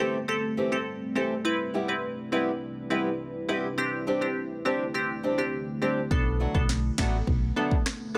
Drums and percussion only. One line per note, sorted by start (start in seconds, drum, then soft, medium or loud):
6.11 kick loud
6.55 kick medium
6.69 snare medium
6.98 finger snap medium
6.98 kick medium
6.98 snare loud
7.27 kick medium
7.71 kick medium
7.86 finger snap loud
7.86 cross-stick loud
7.86 snare loud